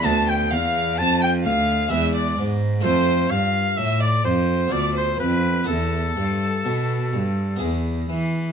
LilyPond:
<<
  \new Staff \with { instrumentName = "Oboe" } { \time 3/4 \key e \phrygian \tempo 4 = 63 a''16 g''16 f''8 a''16 g''16 f''8 e''16 d''16 r8 | c''8 f''8 e''16 d''16 c''8 d''16 c''16 b'8 | a'2 r4 | }
  \new Staff \with { instrumentName = "Violin" } { \time 3/4 \key e \phrygian a''16 g''16 f''8 a''16 g''16 f''8 e''16 d''16 r8 | c''8 f''8 e''16 d''16 c''8 d''16 c''16 b'8 | a'2 r4 | }
  \new Staff \with { instrumentName = "Harpsichord" } { \time 3/4 \key e \phrygian <a b b'>2 <gis b b'>4 | <a f' a'>2 <b f' a'>4 | <b e' a'>2 <b e' gis'>4 | }
  \new Staff \with { instrumentName = "Harpsichord" } { \clef bass \time 3/4 \key e \phrygian d,8 e,8 f,8 d,8 e,8 gis,8 | f,8 g,8 a,8 f,8 d,8 f,8 | e,8 g,8 b,8 g,8 e,8 e8 | }
  \new Staff \with { instrumentName = "Cello" } { \clef bass \time 3/4 \key e \phrygian d,8 e,8 f,8 d,8 e,8 gis,8 | f,8 g,8 a,8 f,8 d,8 f,8 | e,8 g,8 b,8 g,8 e,8 e8 | }
>>